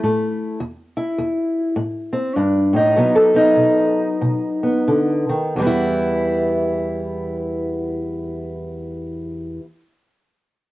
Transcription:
Already playing: E4
0.03 A2 A3
0.60 E2
0.97 E4
1.18 E2
1.76 A2
2.13 C4
2.36 G2 D4
2.73 A2 D#4
2.96 B2 F#3 B3
3.15 A4
3.34 B3 D#4
3.56 B2
4.21 B2
4.63 B3
4.87 D3
5.29 D#3
5.56 E2 E3 G3
5.62 B3
5.67 E4

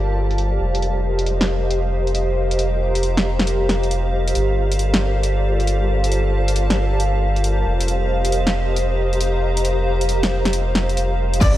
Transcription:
Already playing: G1 F4 G4 A4 A#4 C5 D5 F5 A5
0.31 closed hi-hat
0.38 closed hi-hat
0.60 F1 G4 A#4 C5 D#5
0.75 closed hi-hat
0.82 closed hi-hat
1.19 closed hi-hat
1.26 closed hi-hat
1.41 snare
1.71 closed hi-hat
1.87 A#5
2.07 closed hi-hat
2.15 closed hi-hat
2.51 closed hi-hat
2.59 closed hi-hat
2.95 closed hi-hat
3.03 closed hi-hat
3.17 snare
3.39 snare
3.47 closed hi-hat
3.69 snare
3.83 closed hi-hat
3.91 closed hi-hat
4.28 closed hi-hat
4.35 G1 F4 A4 D5, closed hi-hat
4.72 closed hi-hat
4.79 closed hi-hat
4.94 snare
5.23 closed hi-hat
5.32 A5
5.60 closed hi-hat
5.67 closed hi-hat
6.04 closed hi-hat
6.12 closed hi-hat
6.48 closed hi-hat
6.56 closed hi-hat
6.70 snare
7.00 closed hi-hat
7.36 closed hi-hat
7.44 closed hi-hat
7.66 F1 G4 C5 D#5
7.81 closed hi-hat
7.88 closed hi-hat
8.07 A#5
8.25 closed hi-hat
8.32 closed hi-hat
8.47 snare
8.76 closed hi-hat
9.13 closed hi-hat
9.21 closed hi-hat
9.57 closed hi-hat
9.65 closed hi-hat
10.01 closed hi-hat
10.09 closed hi-hat
10.23 snare
10.45 snare, closed hi-hat
10.53 closed hi-hat
10.75 snare
10.89 closed hi-hat
10.97 closed hi-hat
11.34 closed hi-hat
11.41 G1 D5, kick, closed hi-hat, crash, impact, shaker

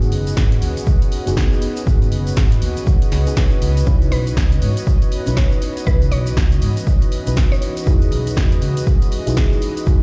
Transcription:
Already playing: G#1 B3 C#4 D#4 F#4 G#4 B4 D#5 F#5
0.02 closed hi-hat, shaker
0.12 F#1, open hi-hat
0.27 closed hi-hat, shaker
0.37 G#1, kick, snare, shaker
0.52 closed hi-hat, shaker
0.62 D#2, open hi-hat
0.77 closed hi-hat, shaker
0.87 kick, shaker
1.02 closed hi-hat, shaker
1.12 open hi-hat
1.26 F#1 B3 D#4 F#4 G#4, closed hi-hat, shaker
1.37 kick, snare, shaker
1.52 shaker
1.62 open hi-hat
1.77 closed hi-hat, shaker
1.86 G#1 B3 D#4 F#4 G#4 C#5, kick, shaker
2.02 closed hi-hat, shaker
2.12 F#1, open hi-hat
2.27 closed hi-hat, shaker
2.36 G#1, kick, snare, shaker
2.52 closed hi-hat, shaker
2.62 D#2, open hi-hat
2.77 closed hi-hat, shaker
2.87 kick, shaker
3.02 closed hi-hat, shaker
3.12 C#2, snare, open hi-hat
3.27 B3 D#4 F#4 G#4, closed hi-hat, shaker
3.36 C#4 D#4 B4, kick, snare, shaker
3.51 shaker
3.62 C#2 E3 D#5, open hi-hat
3.77 closed hi-hat, shaker
3.86 C#2 C#4 D#4 E4 B4, kick, shaker
4.02 closed hi-hat, shaker
4.12 B1 B4, open hi-hat
4.27 closed hi-hat, shaker
4.37 C#2, kick, snare, shaker
4.52 closed hi-hat, shaker
4.62 G#2, open hi-hat
4.77 closed hi-hat, shaker
4.87 kick, shaker
5.02 closed hi-hat, shaker
5.12 open hi-hat
5.26 B1 C#4 D#4 E4 B4, closed hi-hat, shaker
5.37 C#5, kick, snare, shaker
5.52 shaker
5.62 open hi-hat
5.77 closed hi-hat, shaker
5.86 C#2 C#4 D#4 E4 B4, kick, shaker
6.02 closed hi-hat, shaker
6.12 B1 C#5, open hi-hat
6.26 closed hi-hat, shaker
6.37 C#2, kick, snare, shaker
6.52 closed hi-hat, shaker
6.62 G#2, open hi-hat
6.77 closed hi-hat, shaker
6.87 kick, shaker
7.02 closed hi-hat, shaker
7.12 open hi-hat
7.26 B1 C#4 D#4 E4 B4, closed hi-hat, shaker
7.37 kick, snare, shaker
7.52 C#5, shaker
7.62 open hi-hat
7.77 closed hi-hat, shaker
7.86 E2 G#3 D#4 E4 F#4 G#4, kick, shaker
8.02 closed hi-hat, shaker
8.12 B1, open hi-hat
8.27 closed hi-hat, shaker
8.37 E2, kick, snare, shaker
8.52 closed hi-hat, shaker
8.62 C#3, open hi-hat
8.77 closed hi-hat, shaker
8.86 kick, shaker
9.02 closed hi-hat, shaker
9.12 open hi-hat
9.26 B1 D#4 E4 F#4 G#4, closed hi-hat, shaker
9.37 kick, snare, shaker
9.52 shaker
9.62 open hi-hat
9.77 closed hi-hat, shaker
9.86 E2 D#4 E4 F#4 G#4, kick, shaker

